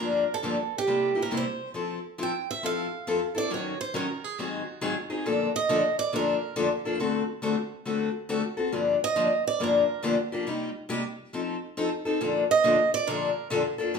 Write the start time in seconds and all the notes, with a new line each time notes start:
Already playing: A#4
0.00 G2 D3 F3 A#3 D4 G4
0.34 A4
0.43 G2 D3 F3 A#3 D4 G4
0.78 G4
0.87 C3 G3 A#3 E4 G4
1.15 A#3 E4 G4
1.22 A#4
1.31 C3 G3 A#3 E4 G4
1.37 C5
1.74 F3 C4 E4 A4
2.18 F3 C4 E4 A4
2.23 G5
2.51 E5
2.63 F3 C4 E4 A4 F5
3.07 F3 C4 E4 A4
3.35 C4 E4 A4 D5
3.50 D#3 F#3 C#4 D#4 A#4 C#5
3.81 C5
3.94 D#3 F#3 C#4 D#4 A#4
4.24 G#4
4.39 G#2 D#3 F#3 C4 D#4 F#4 G#4
4.81 G#2 D#3 F#3 C4 D#4 G#4
5.10 F#3 C4 D#4 G#4
5.26 A#2 D3 F3 A#3 D4 A4
5.56 D#5
5.69 A#2 D3 F3 A#3 D4 A4
5.99 D5
6.13 A#2 D3 F3 A#3 D4 A4 A#4
6.56 A#2 D3 F3 A#3 D4 A4
6.85 F3 A#3 D4 A4
7.00 D3 A3 C4 F#4 A4
7.42 D3 A3 C4 F#4 A4
7.85 D3 A3 C4 F#4 A4
8.29 D3 A3 C4 F#4 A4
8.57 C4 F#4 A4
8.72 G2 D3 F3 A#3 D4 G4
9.04 D#5
9.16 G2 D3 F3 A#3 D4 G4
9.47 D5
9.60 G2 D3 F3 A#3 D4 G4 A#4
10.03 G2 D3 F3 A#3 D4 G4
10.32 F3 A#3 D4 G4
10.47 C3 G3 A#3 D#4 G4
10.89 C3 G3 A#3 D#4 G4
11.33 F3 C4 D#4 A4
11.77 F3 C4 D#4 A4
12.05 C4 D#4 A4
12.21 A#2 D3 F3 A#3 D4 A4
12.51 D#5
12.64 A#2 D3 F3 A#3 D4 A4
12.94 D5
13.07 A#2 D3 F3 A#3 D4 A4 A#4
13.50 A#2 D3 F3 A#3 D4 A4
13.78 F3 A#3 D4 A4
13.94 G2 D3 F3 A#3 D4 G4